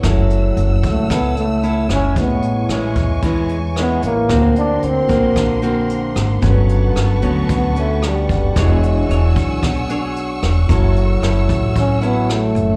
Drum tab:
HH |xxxxxxxx|xxxxxxxx|xxxxxxxx|xxxxxxxx|
SD |r---r--r|--r---r-|r---r--r|--r---r-|
BD |o--oo---|o--oo---|o--oo---|o---o--o|

HH |xxxxxxxx|xxxxxxxx|
SD |r---r--r|--r---r-|
BD |o--oo---|o--oo---|